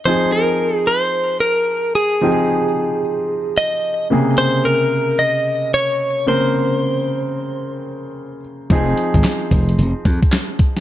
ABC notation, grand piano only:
X:1
M:4/4
L:1/8
Q:"Swing 16ths" 1/4=111
K:Fm
V:1 name="Grand piano"
[F,CEA]8 | [F,CEGA]6- [F,CEGA] [C,D,B,A]- | [C,D,B,A]6- [C,D,B,A] [D,B,CB]- | [D,B,CB]6- [D,B,CB] z |
[F,CEA]8 |]